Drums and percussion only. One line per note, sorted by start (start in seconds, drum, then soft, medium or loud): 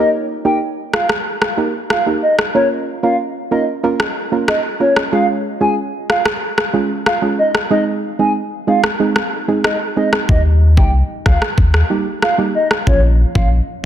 0.94 cross-stick medium
1.09 cross-stick medium
1.42 cross-stick medium
1.90 cross-stick medium
2.39 cross-stick medium
4.00 cross-stick medium
4.48 cross-stick loud
4.96 cross-stick medium
6.10 cross-stick medium
6.26 cross-stick loud
6.58 cross-stick medium
7.06 cross-stick medium
7.55 cross-stick medium
8.84 cross-stick medium
9.16 cross-stick medium
9.64 cross-stick medium
10.13 cross-stick medium
10.29 kick loud
10.77 kick medium
11.26 kick medium
11.26 cross-stick medium
11.42 cross-stick medium
11.58 kick medium
11.74 cross-stick medium
12.22 cross-stick medium
12.71 cross-stick medium
12.87 kick loud
13.35 kick medium